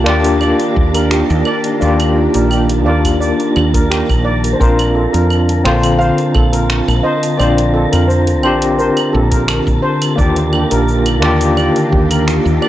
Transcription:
Already playing: D#3 A#3 D4 F4 G4 A#4 A5
0.04 D#2 A#3 D4 F4 D5, finger snap
0.09 G4
0.24 closed hi-hat, cabasa
0.41 D5, cabasa, claves
0.60 closed hi-hat, cabasa
0.76 D#2, kick
0.94 A#4, closed hi-hat, cabasa, claves
1.11 G4, finger snap, cabasa
1.30 D#2, cabasa
1.45 D5, claves
1.64 closed hi-hat, cabasa
1.80 D#2 A#3 D4 F4 D5, cabasa
1.85 G4
2.00 closed hi-hat, cabasa, claves
2.34 A#1 A#4, closed hi-hat, cabasa
2.50 G4, cabasa, claves
2.69 closed hi-hat, cabasa
2.85 D#2 A#3 D4 F4 D5
2.89 A#4
3.04 kick, closed hi-hat, cabasa, claves
3.20 D5, cabasa
3.40 closed hi-hat, cabasa
3.56 D#2, claves
3.74 A#4, kick, closed hi-hat, cabasa
3.90 G4, finger snap, cabasa
4.09 A#1, kick, cabasa, claves
4.25 D5
4.44 closed hi-hat, cabasa
4.53 C5
4.59 A#1 D3 C4 D4 F4 A#4 C5, kick, cabasa
4.79 closed hi-hat, cabasa, claves
4.95 A4
5.13 F2 A#4, closed hi-hat, cabasa
5.30 cabasa, claves
5.49 closed hi-hat, cabasa
5.64 A#1 D3 C4 F4 C5, finger snap
5.83 closed hi-hat, cabasa, claves
5.99 C5 F5, cabasa
6.18 closed hi-hat, cabasa
6.35 A#1 A4, kick, claves
6.53 A#4, closed hi-hat, cabasa
6.70 finger snap, cabasa
6.88 A#1, cabasa, claves
7.03 C5 D#5
7.23 closed hi-hat, cabasa
7.37 A#1 C4 D4 C5 D5, cabasa, claves
7.42 F4
7.58 closed hi-hat, cabasa
7.74 A4
7.92 F2 A#4, closed hi-hat, cabasa, claves
8.07 C5, cabasa
8.27 closed hi-hat, cabasa
8.43 A#1 C4 D4 G4 C5, claves
8.62 closed hi-hat, cabasa
8.78 A#4 C5, cabasa
8.97 closed hi-hat, cabasa, claves
9.13 A#1 A4
9.31 A#4, kick, closed hi-hat, cabasa
9.48 finger snap, cabasa, claves
9.67 A#1, kick, cabasa
9.82 C5
10.02 closed hi-hat, cabasa, claves
10.16 D#2 D#3 A#3 D4 F4 G4 D5, kick, cabasa
10.20 F4 G4
10.36 closed hi-hat, cabasa
10.53 G4, claves
10.71 A#1 A#4, closed hi-hat, cabasa
10.89 cabasa
11.06 closed hi-hat, cabasa, claves
11.20 D#2 A#3 D4 F4 D5, finger snap
11.25 G4
11.41 closed hi-hat, cabasa
11.57 D5, cabasa, claves
11.76 closed hi-hat, cabasa
11.92 D#2 G4, kick
12.10 A#4, closed hi-hat, cabasa, claves
12.28 finger snap, cabasa
12.45 D#2, cabasa
12.62 D5, claves

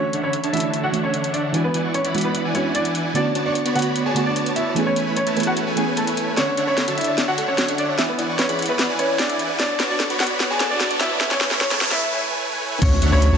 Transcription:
Already playing: E3 A3 C#4 D4 F#4 C#5
0.13 D3 D4 C#5 E5 F#5, closed hi-hat
0.23 D3 C#4 D4 C#5 E5 B5
0.33 closed hi-hat
0.44 D3 D4 C#5 E5 A5, closed hi-hat
0.52 E3 A3 C#4 D4 E4 F#4 E5, closed hi-hat
0.57 closed hi-hat
0.60 closed hi-hat
0.74 closed hi-hat
0.83 D3 D4 F#4 C#5 E5 F#5
0.92 E3 A3 D4 C#5, closed hi-hat
0.96 F#4
1.04 C#4 C#5
1.14 closed hi-hat
1.24 closed hi-hat
1.33 D4 D5, closed hi-hat
1.52 E3 G#3 B3 D4 E4 F#4 D5 F#5 G#5, closed hi-hat
1.64 B3 B4
1.74 E3 E4 D5 F#5 G#5, closed hi-hat
1.85 E3 E4 D5 F#5 C#6
1.94 C#4 C#5, closed hi-hat
2.05 E3 E4 D5 F#5 B5, closed hi-hat
2.13 E3 G#3 B3 D4 F#4, closed hi-hat
2.18 closed hi-hat
2.21 B3 B4, closed hi-hat
2.35 closed hi-hat
2.45 E3 E4 D5 F#5 G#5
2.53 E3 G#3 B3 C#4 D4 C#5, closed hi-hat
2.57 F#4
2.75 D4 D5, closed hi-hat
2.85 closed hi-hat
2.95 closed hi-hat
3.13 D3 A3 B3 C#4 D4 F#4 C#5 D5 A5, closed hi-hat
3.17 F#4
3.35 B3 F#4 C#5 D5 A5, closed hi-hat
3.45 B3 D4 F#4 C#5 D5 C#6
3.55 closed hi-hat
3.66 B3 F#4 C#5 D5 B5, closed hi-hat
3.74 D3 A3 B3 C#4 F#4 F#5, closed hi-hat
3.79 closed hi-hat
3.82 closed hi-hat
3.96 closed hi-hat
4.06 B3 F#4 G#4 C#5 D5 G#5 A5
4.13 D3 A3 B3 F#4, closed hi-hat
4.26 D4 D5
4.36 closed hi-hat
4.46 closed hi-hat
4.56 E4 E5, closed hi-hat
4.74 E3 A3 B3 C#4 E4 G#4 B4 C#5 G#5, closed hi-hat
4.86 C#4 C#5
4.96 A3 E4 B4 C#5 G#5, closed hi-hat
5.07 A3 E4 B4 C#5 B5
5.17 C#4 C#5, closed hi-hat
5.27 A3 E4 B4 C#5 A5, closed hi-hat
5.36 E3 A3 B3 C#4 G#4, closed hi-hat
5.40 closed hi-hat
5.43 F#4 F#5, closed hi-hat
5.57 closed hi-hat
5.67 A3 E4 B4 C#5 G#5
5.75 E3 A3 B3 C#4 G#4 G#5, closed hi-hat
5.79 G#4
5.97 A4 A5, closed hi-hat
6.07 A3 E4 B4 C#5 G#5, closed hi-hat
6.17 closed hi-hat
6.37 D3 C#4 D4 C#5 D5 E5 F#5, snare, closed hi-hat, riser
6.57 D3 D4 C#5 E5 F#5, closed hi-hat
6.67 D3 C#4 D4 C#5 E5 B5
6.78 A4, snare, closed hi-hat
6.88 D3 D4 F#4 C#5 E5 A5, closed hi-hat
6.97 E4 E5, closed hi-hat
7.01 closed hi-hat
7.04 D5, closed hi-hat
7.18 C#5, snare, closed hi-hat
7.28 D3 D4 F#4 C#5 E5 F#5
7.38 A4, closed hi-hat
7.48 C#4 C#5
7.58 F#4, snare, closed hi-hat
7.68 D5, closed hi-hat
7.78 D4 D5, closed hi-hat
7.88 C#5
7.98 E3 E4 D5 E5 F#5 G#5, snare, closed hi-hat
8.09 B3 B4
8.18 E3 E4 D5 F#5 G#5, closed hi-hat
8.29 E3 E4 D5 F#5 C#6
8.38 C#4 B4 C#5, snare, closed hi-hat
8.49 E3 E4 G#4 D5 F#5 B5, closed hi-hat
8.59 closed hi-hat
8.62 closed hi-hat
8.66 B3 B4 E5, closed hi-hat
8.79 D5, snare, closed hi-hat
8.89 E3 E4 D5 F#5 G#5
8.99 C#4 B4 C#5, closed hi-hat
9.19 D4 G#4 D5, snare, closed hi-hat
9.29 E5, closed hi-hat
9.39 closed hi-hat
9.49 D5
9.59 B3 D4 F#4 C#5 D5 A5, snare, closed hi-hat
9.80 B3 F#4 B4 C#5 D5 A5, snare, closed hi-hat
9.90 B3 D4 F#4 C#5 D5 C#6
10.00 A4, snare, closed hi-hat
10.10 B3 F#4 C#5 D5 B5, closed hi-hat
10.20 F#4 F#5, snare, closed hi-hat
10.23 closed hi-hat
10.27 D5, closed hi-hat
10.40 B4, snare, closed hi-hat
10.50 B3 F#4 G#4 C#5 D5 G#5 A5
10.60 A4, snare, closed hi-hat
10.70 D4 D5
10.80 F#4, snare, closed hi-hat
10.91 D5, closed hi-hat
11.00 E4 E5, snare, closed hi-hat
11.11 B4
11.21 A3 E4 B4 C#5 E5 G#5, snare, closed hi-hat
11.31 C#4 C#5, snare
11.41 A3 E4 B4 C#5 G#5, snare, closed hi-hat
11.51 A3 E4 B4 C#5 B5, snare
11.61 C#4 A4 C#5, snare, closed hi-hat
11.71 A3 E4 G#4 B4 C#5 A5, snare, closed hi-hat
11.81 snare, closed hi-hat
11.84 closed hi-hat
11.88 E4 E5, snare, closed hi-hat
12.11 A3 E4 B4 C#5 G#5
12.52 A3 E4 B4 C#5 G#5
12.82 D2 D3 C#4 D4 C#5 E5 F#5, kick, closed hi-hat, crash, impact
13.02 D2 D3 D4 C#5 E5 F#5, closed hi-hat
13.12 D2 D3 C#4 D4 C#5 E5 B5
13.22 closed hi-hat
13.32 D2 D3 D4 C#5 E5 A5

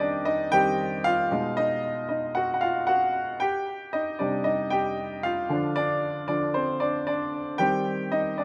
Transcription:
Already playing: D#3 G3 C4 D#4 G4 D#5 G5
0.00 D4 D5
0.25 D#4 D#5
0.52 D#3 G3 C4 G4 G5
1.04 F4 F5
1.31 B2 G#3 D#4
1.57 D#4 D#5
2.09 D#4 D#5
2.35 F#4 F#5
2.54 F#5
2.61 F4 F5
2.87 F#4 F#5
3.40 G4 G5
3.93 D#4 D#5
4.19 C3 G3 D4 D#4 D5
4.44 D#4 D#5
4.70 G4 G5
5.23 F4 F5
5.49 D3 F3 D4
5.76 D4 D5
6.28 D3 F3 D4 D5
6.54 C4 C5
6.80 D4 D5
7.07 D4 D5
7.58 D#3 G3 C4 G4 G5
8.12 D#4 D#5
8.38 D4 D5

